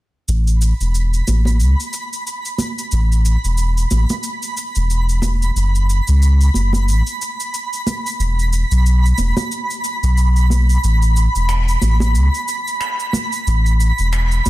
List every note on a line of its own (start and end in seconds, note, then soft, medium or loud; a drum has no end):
0.28 0.73 A1 medium
0.28 14.50 B5 medium
0.28 cabasa soft
0.47 cabasa soft
0.62 cabasa medium
0.80 1.22 E1 medium
0.80 cabasa soft
0.95 cabasa soft
1.14 cabasa soft
1.28 1.62 A1 medium
1.28 high conga soft
1.28 cabasa medium
1.45 high conga medium
1.45 cabasa soft
1.60 1.75 C#2 medium
1.60 cabasa soft
1.80 cabasa soft
1.93 cabasa medium
2.13 cabasa soft
2.27 cabasa soft
2.45 cabasa soft
2.58 high conga medium
2.58 cabasa medium
2.79 cabasa soft
2.92 3.37 A1 medium
2.92 cabasa medium
3.12 cabasa soft
3.25 cabasa medium
3.44 3.85 E1 medium
3.44 cabasa soft
3.58 cabasa medium
3.78 cabasa soft
3.91 4.05 A1 medium
3.91 high conga medium
3.91 cabasa medium
4.09 high conga medium
4.09 cabasa soft
4.23 cabasa soft
4.43 cabasa soft
4.57 cabasa medium
4.75 5.50 E1 medium
4.75 cabasa soft
4.90 cabasa medium
5.09 cabasa soft
5.22 high conga medium
5.22 cabasa medium
5.42 cabasa soft
5.56 6.00 F#1 loud
5.56 cabasa medium
5.75 cabasa soft
5.90 cabasa medium
6.08 6.49 C#2 medium
6.08 cabasa soft
6.22 cabasa medium
6.41 cabasa soft
6.54 6.89 F#1 medium
6.54 high conga medium
6.54 cabasa medium
6.73 high conga medium
6.73 cabasa soft
6.88 7.02 A1 medium
6.88 cabasa medium
7.07 cabasa soft
7.22 cabasa medium
7.40 cabasa soft
7.54 cabasa medium
7.73 cabasa soft
7.87 high conga medium
7.87 cabasa medium
8.06 cabasa medium
8.20 8.64 E1 medium
8.20 cabasa medium
8.39 cabasa soft
8.53 cabasa medium
8.71 9.13 B1 medium
8.71 cabasa soft
8.86 cabasa soft
9.06 cabasa soft
9.18 9.32 E1 medium
9.18 high conga medium
9.18 cabasa medium
9.37 high conga medium
9.37 cabasa soft
9.52 cabasa medium
9.71 cabasa soft
9.84 cabasa medium
10.03 10.77 B1 medium
10.03 cabasa soft
10.18 cabasa medium
10.36 cabasa soft
10.50 high conga medium
10.50 cabasa medium
10.69 cabasa soft
10.84 11.28 A1 loud
10.84 cabasa medium
11.02 cabasa soft
11.17 cabasa medium
11.35 11.77 E1 medium
11.35 cabasa soft
11.49 finger snap medium
11.49 cabasa medium
11.69 cabasa soft
11.81 12.16 A1 medium
11.81 high conga medium
11.81 cabasa medium
12.00 high conga medium
12.00 cabasa soft
12.15 12.29 C#2 medium
12.15 cabasa medium
12.35 cabasa soft
12.48 cabasa medium
12.68 cabasa soft
12.81 finger snap medium
12.81 cabasa soft
13.00 cabasa soft
13.13 high conga medium
13.13 cabasa medium
13.32 cabasa soft
13.47 13.91 A1 loud
13.47 cabasa medium
13.66 cabasa soft
13.80 cabasa medium
13.98 14.40 E1 medium
13.98 cabasa soft
14.13 finger snap medium
14.13 cabasa medium
14.32 cabasa soft
14.46 14.50 A1 medium
14.46 high conga medium
14.46 cabasa medium